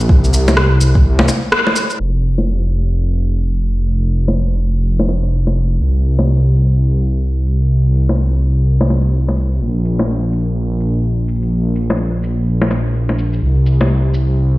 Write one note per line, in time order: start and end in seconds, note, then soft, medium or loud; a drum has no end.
0.00 shaker soft
0.09 0.80 C2 loud
0.09 kick loud
0.24 shaker soft
0.33 shaker medium
0.48 low bongo medium
0.48 shaker soft
0.57 cross-stick loud
0.81 1.27 C2 medium
0.81 shaker medium
0.95 kick loud
1.19 low bongo medium
1.28 low bongo soft
1.28 shaker medium
1.52 cross-stick loud
1.67 low bongo soft
1.76 shaker medium
1.90 shaker soft
2.00 5.79 F1 medium
2.23 shaker medium
2.38 low bongo soft
2.71 shaker medium
3.19 shaker soft
3.66 shaker soft
3.81 shaker soft
4.13 shaker medium
4.28 low bongo soft
4.61 shaker soft
4.99 low bongo medium
5.09 low bongo soft
5.09 shaker medium
5.47 low bongo soft
5.57 shaker soft
5.71 shaker soft
5.81 9.60 C2 medium
6.04 shaker medium
6.19 low bongo soft
6.52 shaker soft
6.99 shaker soft
7.47 shaker soft
7.62 shaker soft
7.95 shaker soft
8.09 low bongo soft
8.42 shaker soft
8.81 low bongo medium
8.90 low bongo soft
8.90 shaker soft
9.28 low bongo soft
9.37 shaker soft
9.52 shaker soft
9.61 13.40 A#1 medium
9.85 shaker soft
9.99 low bongo soft
10.32 shaker soft
10.80 shaker soft
11.28 shaker soft
11.42 shaker soft
11.76 shaker soft
11.90 low bongo soft
12.23 shaker soft
12.61 low bongo medium
12.71 low bongo soft
12.71 shaker soft
13.09 low bongo soft
13.18 shaker soft
13.33 shaker soft
13.42 14.58 C2 medium
13.66 shaker medium
13.81 low bongo medium
14.14 shaker soft